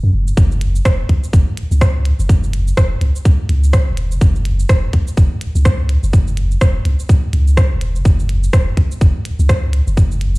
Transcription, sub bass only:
0.03 F#2
0.13 F#1
0.37 F#1
0.85 E1
1.09 C#2
1.33 F#1
1.71 C#2
2.19 F#1
2.29 F#1
2.77 E1
3.01 C#2
3.49 C#2
3.87 E1
4.11 F#1
4.21 F#1
4.69 E1
4.93 C#2
5.17 F#1
5.55 C#2
6.03 F#1
6.13 F#1
6.61 E1
6.85 C#2
7.33 C#2
7.71 E1
7.95 F#1
8.05 F#1
8.53 E1
8.77 C#2
9.01 F#1
9.39 C#2
9.87 F#1
9.97 F#1

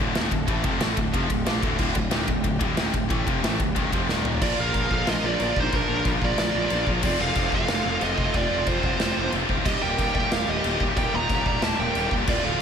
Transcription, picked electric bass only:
0.00 D1
0.16 D#1
0.31 D1
0.48 A1
0.64 F1
0.81 A1
0.97 D1
1.14 F1
1.30 D1
1.46 A#1
1.62 D1
1.79 D1
1.95 D1
2.11 D#1
2.28 D1
2.44 D1
2.60 D1
2.78 D#1
2.93 D1
3.10 A1
3.27 F1
3.43 A1
3.60 D1
3.76 D#1
3.93 F1
4.09 D#1
4.41 A#1
4.59 A#1
4.75 A#1
4.91 A#1
5.08 A#1
5.23 A#1
5.40 A#1
5.56 A#1
5.73 A#1
5.89 A#1
6.05 A#1
6.22 A#1
6.38 A#1
6.54 A#1
6.71 A#1
6.87 A#1
7.03 F1
7.20 F1
7.36 F1
7.52 F1
7.68 F1
7.85 F1
8.02 F1
8.18 F1
8.34 F1
8.50 F1
8.67 F1
8.83 F1
9.01 F1
9.17 F1
9.33 F1
9.49 D1
9.65 D#1
9.83 D#1
9.98 D#1
10.15 D#1
10.32 D#1
10.48 D#1
10.64 D#1
10.80 D#1
10.97 D#1
11.14 D#1
11.30 D#1
11.46 D#1
11.62 D#1
11.78 D#1
11.95 D#1
12.11 D#1
12.27 D1
12.44 D1

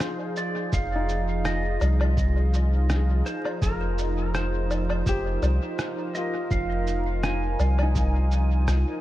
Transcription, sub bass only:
0.73 F1
1.81 C2
3.62 F1
5.06 F1
5.42 C2
6.51 F1
7.59 C2
8.68 C2

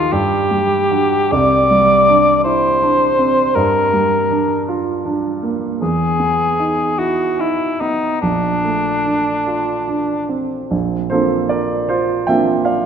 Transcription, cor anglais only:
Already playing: F4
0.13 G4
1.32 D5
2.44 C5
3.56 A#4
5.81 G#4
6.99 F#4
7.40 E4
7.81 D#4
8.22 D4

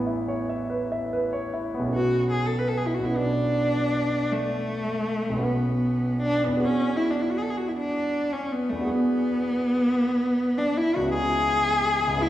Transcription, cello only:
1.95 F#4
2.31 G#4
2.47 A4
2.59 B4
2.68 A4
2.77 G#4
2.87 E4
2.95 F#4
3.05 E4
3.17 D4
4.32 A3
5.45 B3
6.22 D4
6.44 B3
6.65 C#4
6.97 E4
7.11 D4
7.22 E4
7.31 F#4
7.38 G#4
7.43 A4
7.50 G#4
7.57 F#4
7.68 E4
7.77 D4
8.33 C#4
8.53 B3
8.70 A3
8.90 B3
10.58 D4
10.78 E4
10.96 F#4
11.14 G#4
12.23 E4

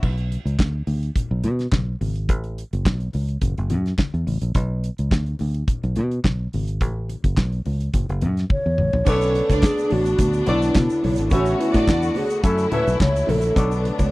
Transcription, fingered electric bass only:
0.03 B1
0.45 C#2
0.59 D2
0.87 D2
1.31 B1
1.44 B2
1.72 B1
2.01 G#1
2.29 A1
2.73 F#1
2.86 B1
3.15 C#2
3.42 F#1
3.58 F#1
3.70 F#2
4.14 E2
4.27 A1
4.42 A#1
4.55 B1
4.99 C#2
5.12 D2
5.41 D2
5.84 B1
5.97 B2
6.24 B1
6.54 G#1
6.81 A1
7.24 F#1
7.37 B1
7.66 C#2
7.94 F#1
8.09 F#1
8.22 F#2
8.66 E2
8.79 A1
8.94 A#1
9.07 B1
9.50 C#2
9.92 A1
10.19 D2
10.48 B1
10.75 B2
11.04 B1
11.19 G#1
11.31 A1
11.74 A2
11.88 E2
12.44 F#2
12.87 B1
13.00 C#2
13.29 A#1
13.56 B1
13.99 C#2

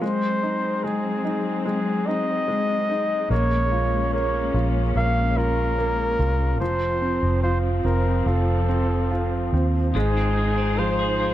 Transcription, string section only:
0.02 F#3 G#3 C4
3.32 A#3 C#4
6.60 F3 C4
9.94 G#3 D#4 F4 C5

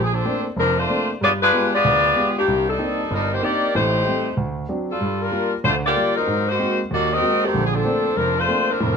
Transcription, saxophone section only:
0.04 G#4
0.13 F3 C4 D4 A4
0.58 F3 C4 D4 A#4
0.78 A3 D4 F4 C5
1.22 B3 F4 G#4 D5
1.42 G#3 D4 F4 B4
1.74 B3 F4 G#4 D5
2.38 D#3 A#3 D4 G4
2.69 G3 D4 D#4 A4
3.13 G3 D4 D#4 A#4
3.32 A#3 D#4 G4 C5
3.43 A#3 D#4 G4 D5
3.75 A3 D#4 G4 C5
4.91 G3 D4 F4 A4
5.21 G3 D4 F4 A#4
5.65 A3 D4 F4 C5
5.85 A#3 F4 G4 D5
6.16 F#3 C4 D#4 A#4
6.48 A#3 D#4 F#4 C5
6.93 A#3 D#4 F#4 D5
7.12 C4 F#4 A#4 D#5
7.45 D#3 A3 C4 G4
7.66 G#4
7.74 F3 C4 D4 A4
8.17 F3 C4 D4 A#4
8.38 A3 D4 F4 C5
8.70 F3 C4 D4 A#4

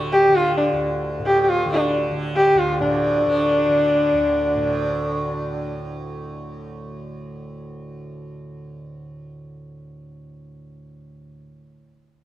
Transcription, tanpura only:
Already playing: D2 A2 D3
0.28 D3
0.73 D2
1.19 A2
1.65 D3
2.10 D3
2.55 D2
2.80 A2
3.25 D3
3.69 D3
4.14 D2
4.55 A2

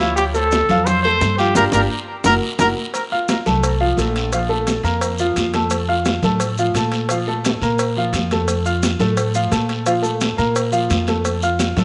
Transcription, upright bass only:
Already playing: D2
0.69 F2
1.21 G2
1.55 G1
1.73 G1
2.25 F#1
2.59 F#1
3.46 C2
3.97 A#1
4.83 F2
5.36 F2
6.22 A2
6.74 A#2
7.61 A#2
8.13 F2
8.99 A2
9.51 A#2
10.38 A#2
10.90 F2
11.76 A2

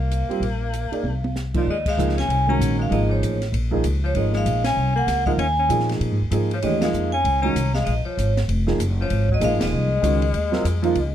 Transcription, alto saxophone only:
Already playing: A#3
1.56 F3
1.70 G#3
1.87 G#3
2.17 C#4
2.49 C#4
2.79 G#3
2.89 G#3
3.09 F3
4.04 F3
4.16 G#3
4.34 G#3
4.64 C#4
4.95 A#3
5.26 G#3
5.38 C#4
5.59 C#4
6.53 F3
6.65 G#3
6.83 G#3
7.14 C#4
7.42 C#4
7.75 G#3
7.86 G#3
8.05 F3
9.01 F3
9.31 F#3
9.43 G#3
9.62 G#3

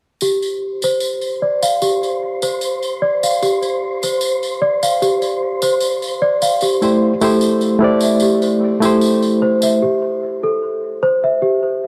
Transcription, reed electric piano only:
6.82 A3 E4 G4 C5
7.21 A3 E4 G4 C5
7.79 A3 E4 G4
7.84 D5
8.80 A3 E4 G4
8.85 C5

